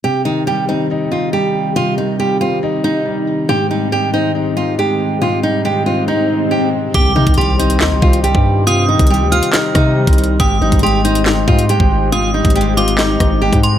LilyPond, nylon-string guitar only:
\new Staff \with { instrumentName = "Nylon-string guitar" } { \time 4/4 \key c \minor \tempo 4 = 139 g'8 ees'8 g'8 ees'8 r8 f'8 g'4 | f'8 ees'8 g'8 f'8 r8 ees'4. | g'8 ees'8 g'8 ees'8 r8 f'8 g'4 | f'8 ees'8 g'8 f'8 ees'4 g'8 r8 |
g'8 ees'8 g'8 ees'8 r8 f'8 g'4 | f'8 ees'8 g'8 f'8 r8 ees'4. | g'8 ees'8 g'8 ees'8 r8 f'8 g'4 | f'8 ees'8 g'8 f'8 ees'4 g'8 r8 | }